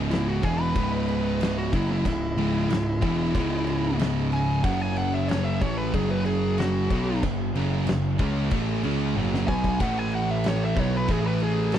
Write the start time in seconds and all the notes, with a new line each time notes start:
Already playing: C#1 C#2 G#2 C#3 G#3 D#5
0.11 E4, snare, crash
0.28 F#4
0.42 E1 E2 B2 E3 G#4, kick, crash
0.61 B4
0.76 C#1 C#2 G#2 C#3, kick, crash
1.08 crash
1.41 snare, crash
1.58 F#4
1.73 F#1 F#2 C#3 F#3 E4, kick, crash
1.92 E4
2.05 C#1 C#2 G#2 E4, kick, crash
2.37 C#1 C#2 G#2 C#3, crash
2.69 C#1 C#2 G#2, snare, crash
3.02 E1 E2 B2 E3, kick, crash
3.33 C#1 C#2 G#2 C#3, kick, crash
3.67 crash
3.99 snare, crash
4.32 G#5, crash
4.63 F#1 F#2 C#3 F#3 C#4 G#4 F#5, kick, crash
4.81 G#5
4.96 F#5, crash
5.14 E5
5.28 C#5, snare, crash
5.44 E5
5.61 A1 A2 E3 A3 C#5, kick, crash
5.77 B4
5.93 F#1 F#2 C#3 F#3 G#4, kick, crash
6.10 B4
6.25 G#4, crash
6.58 F#4, snare, crash
6.90 B1 B2 F#3 B3, kick, crash
7.23 F#1 F#2 C#3 B3, kick, crash
7.55 F#1 F#2 C#3 F#3, crash
7.86 F#1 F#2 C#3, snare, crash
8.19 C#2 C#3 G#3 C#4, kick, crash
8.51 A1 A2 E3 A3, kick, crash
8.83 C#2 C#3 G#3 C#4, crash
9.15 F#1 F#2 C#3 F#3, high tom
9.34 snare
9.47 B1 B2 F#3 B3 G#5, kick
9.64 kick
9.80 A1 A2 E3 A3 E4 B4 F#5, kick, splash, crash
9.99 G#5
10.11 F#5, crash
10.31 E5
10.44 snare, crash
10.48 C#5
10.65 E5
10.76 B1 B2 F#3 B3 C#5, kick, crash
10.97 B4
11.08 A1 A2 E3 A3 G#4, kick, crash
11.27 B4
11.40 G#4, crash
11.72 A4, snare, crash